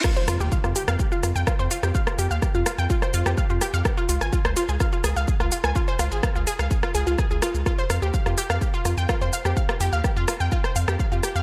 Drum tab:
CC |x---------------|----------------|----------------|----------------|
HH |--o---o---o---o-|--o---o---o---o-|--o---o---o---o-|--o---o---o---o-|
SH |xxxxxxxxxxxxxxxx|xxxxxxxxxxxxxxxx|xxxxxxxxxxxxxxxx|xxxxxxxxxxxxxxxx|
SD |r-r--r-r--r-r--r|-r--r-r--r-r--r-|r--r-r--r-r--r-r|--r-r--r-r--r-r-|
BD |o---o---o---o---|o---o---o---o---|o---o---o---o---|o---o---o---o---|

CC |----------------|----------------|
HH |--o---o---o---o-|--o---o---o---o-|
SH |xxxxxxxxxxxxxxxx|xxxxxxxxxxxxxxxx|
SD |r-r--r-r--r-r--r|-r--r-r--r-r--r-|
BD |o---o---o---o---|o---o---o---o---|